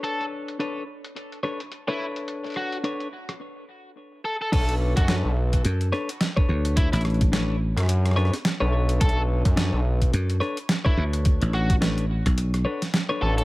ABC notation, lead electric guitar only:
X:1
M:4/4
L:1/16
Q:"Swing 16ths" 1/4=107
K:Bm
V:1 name="Lead electric guitar"
A z12 E z2 | z2 F z8 z3 A A | A z2 F z12 | E E z12 z2 |
A z12 E z2 | z2 F z8 z3 A A |]